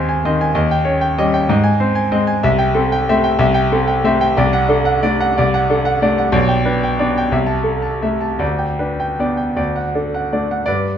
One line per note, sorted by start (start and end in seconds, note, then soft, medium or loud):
0.00 0.55 D#2 medium
0.00 0.22 C4 medium
0.00 0.19 C5 soft
0.00 0.25 D#5 medium
0.00 0.09 G#5 medium
0.09 0.34 G#5 medium
0.25 0.53 D#3 medium
0.25 0.53 C4 medium
0.25 0.50 D#5 medium
0.41 0.56 G#5 medium
0.55 0.85 D#2 medium
0.55 0.80 D#5 medium
0.71 0.96 G5 medium
0.85 1.15 C#4 soft
0.85 1.11 C#5 medium
1.01 1.27 G5 medium
1.18 1.47 G3 medium
1.18 1.47 C#4 medium
1.18 1.44 D#5 medium
1.34 1.49 G5 medium
1.49 1.80 G#2 medium
1.49 1.75 D#5 medium
1.64 1.90 G#5 medium
1.80 2.09 C4 medium
1.80 2.06 C5 medium
1.95 2.22 G#5 medium
2.12 2.40 G#3 medium
2.12 2.41 C4 medium
2.12 2.38 D#5 medium
2.27 2.43 G#5 medium
2.43 2.75 C2 medium
2.43 2.69 E5 medium
2.59 2.85 G5 medium
2.74 3.05 C4 medium
2.74 3.01 A4 medium
2.92 3.18 G5 medium
3.09 3.38 A3 medium
3.09 3.38 C4 medium
3.09 3.35 E5 medium
3.24 3.50 G5 medium
3.39 3.71 C2 medium
3.39 3.65 E5 medium
3.54 3.82 G5 medium
3.72 4.02 C4 medium
3.72 3.99 A4 medium
3.87 4.15 G5 medium
4.04 4.35 A3 medium
4.04 4.35 C4 medium
4.04 4.32 E5 medium
4.21 4.38 G5 medium
4.37 4.70 C2 medium
4.37 4.64 D5 medium
4.53 4.80 F#5 medium
4.69 5.00 D4 medium
4.69 4.97 A4 medium
4.85 5.14 F#5 medium
5.03 5.33 A3 medium
5.03 5.34 D4 medium
5.03 5.30 D5 medium
5.21 5.47 F#5 medium
5.38 5.69 C2 medium
5.38 5.63 D5 medium
5.54 5.79 F#5 medium
5.70 5.99 D4 medium
5.70 5.96 A4 medium
5.85 6.11 F#5 medium
6.02 6.31 A3 medium
6.02 6.31 D4 medium
6.02 6.28 D5 medium
6.18 6.34 F#5 medium
6.32 6.64 B1 medium
6.32 6.59 D5 medium
6.48 6.76 G5 medium
6.65 6.96 D4 soft
6.65 6.93 B4 medium
6.83 7.10 G5 medium
6.99 7.29 B3 medium
6.99 7.30 D4 medium
6.99 7.26 D5 medium
7.18 7.33 G5 medium
7.32 7.64 C2 medium
7.32 7.59 E5 medium
7.46 7.75 A5 medium
7.63 7.94 A4 soft
7.82 8.13 A5 medium
8.02 8.37 A3 soft
8.02 8.33 E5 medium
8.21 8.40 A5 medium
8.39 8.78 D2 medium
8.39 8.72 D5 medium
8.59 8.91 G5 soft
8.79 9.15 D4 soft
8.79 9.11 B4 soft
9.00 9.31 G5 medium
9.19 9.54 B3 soft
9.19 9.54 D4 soft
9.19 9.50 D5 soft
9.37 9.57 G5 medium
9.57 9.93 D2 medium
9.57 9.87 D5 medium
9.76 10.06 F#5 soft
9.95 10.28 D4 soft
9.95 10.25 A4 soft
10.14 10.43 F#5 soft
10.33 10.64 A3 soft
10.33 10.64 D4 soft
10.33 10.61 D5 soft
10.51 10.68 F#5 soft
10.66 10.98 G2 soft
10.66 10.98 B4 medium
10.66 10.98 D5 medium